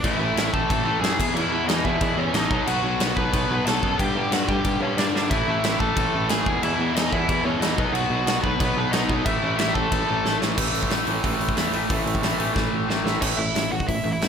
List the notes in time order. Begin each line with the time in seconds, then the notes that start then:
0.04 A1 A2 E3 A3 E4 E5, kick, crash
0.19 A1 A2 E3 A3
0.36 A1 A2 E3 A3, snare, crash
0.53 A1 A2 E3 A3 A4 A5, kick
0.69 A1 A2 E3 A3, kick, crash
0.85 A1 A2 E3 A3
1.01 F#2 A2 E3 A3 G#4 G#5, crash
1.05 snare
1.19 E2 B2 E3, kick, crash
1.34 E2 B2 E3 E4 E5, crash
1.51 E2 B2 E3
1.68 E2 B2 E3 D#4 D#5, snare, crash
1.85 E2 B2 E3 E4 E5, kick
2.01 E2 B2 E3, kick, crash
2.17 E2 B2 E3 C#4 C#5
2.34 A1 E2 B2 E3 D#4 D#5, snare, crash
2.51 B1 B2 F#3 B3, kick
2.67 B1 B2 F#3 B3 F#4 F#5, crash
2.83 B1 B2 F#3 B3
3.00 B1 B2 F#3 B3, snare, crash
3.16 B1 B2 F#3 B3 B4 B5, kick
3.33 B1 B2 F#3 B3, kick, crash
3.49 B1 B2 F#3 B3
3.66 B1 B2 F#3 B3 A4 A5, snare, crash
3.83 F#2 B2 F#3 B3, kick
3.99 G2 D3 G3 G4 G5, kick, crash
4.15 G2 D3 G3
4.32 G2 D3 G3 F#4 F#5, snare, crash
4.48 G2 D3 G3 G4 G5, kick
4.64 G2 D3 G3, kick, crash
4.81 G2 D3 G3 C#4 C#5
4.97 G2 D3 G3 D4 D5, snare, crash
5.13 G2 D3 G3, snare
5.30 A1 A2 E3 A3 E4 E5, kick, crash
5.47 A1 A2 E3 A3
5.64 A1 A2 E3 A3, snare, crash
5.80 A1 A2 E3 A3 A4 A5, kick
5.97 A1 A2 E3 A3, kick, crash
6.13 A1 A2 E3 A3
6.29 A1 A2 E3 A3 G#4 G#5, snare, crash
6.46 E2 B2 E3, kick
6.63 E2 B2 E3 E4 E5, crash
6.79 E2 B2 E3
6.96 E2 B2 E3 D#4 D#5, snare, crash
7.13 E2 B2 E3 E4 E5, kick
7.29 E2 B2 E3, kick, crash
7.45 E2 B2 E3 C#4 C#5
7.60 E2 B2 E3 D#4 D#5, snare, crash
7.77 B1 B2 F#3 B3, kick
7.93 B1 B2 F#3 B3 F#4 F#5, crash
8.10 B1 B2 F#3 B3
8.26 B1 B2 F#3 B3, snare, crash
8.43 B1 B2 F#3 B3 B4 B5, kick
8.60 B1 B2 F#3 B3, kick, crash
8.76 B1 B2 F#3 B3
8.92 B1 B2 F#3 B3 D#4 D#5, snare, crash
9.09 B1 B2 F#3 B3, kick
9.25 A1 A2 E3 A3 E4 E5, kick, crash
9.42 A1 A2 E3 A3
9.57 A1 A2 E3 A3 E4 E5, snare, crash
9.74 A1 A2 E3 A3 A4 A5, kick
9.91 A1 A2 E3 A3, kick, crash
10.07 A1 A2 E3 A3
10.25 A1 A2 E3 A3, snare
10.40 A1 A2 E3 A3, snare
10.57 A1 A2 E3 A3, kick, crash
10.74 A1, open hi-hat
10.83 kick
10.90 A1 A2 E3 A3, snare, open hi-hat
11.07 A1 A2 E3 A3, open hi-hat
11.23 A1 A2 E3 A3, kick, open hi-hat
11.40 A1, open hi-hat
11.49 kick
11.56 E2 A2 E3 A3, snare, open hi-hat
11.73 A1 A2 E3 A3, open hi-hat
11.89 A1 A2 E3 A3, kick, open hi-hat
12.05 A1, open hi-hat
12.15 kick
12.22 A1 A2 E3 A3, snare, open hi-hat
12.38 A1 A2 E3 A3, open hi-hat
12.54 A1 A2 E3 A3, kick, snare
12.72 A1
12.88 A1 A2 E3 A3, snare
13.04 A1 A2 E3 A3, snare
13.21 A1 A2 E3 A3 C#4 C#5, kick, crash
13.37 A1 A2 E3 E4 E5
13.55 A1 A2 E3, snare, open hi-hat
13.71 A1 A2 E3 F#4 F#5
13.80 kick
13.88 A1 A2 E3 E4 E5, kick, open hi-hat
14.04 A1 A2 E3
14.12 E4 E5
14.21 F#2 A2 E3, snare, open hi-hat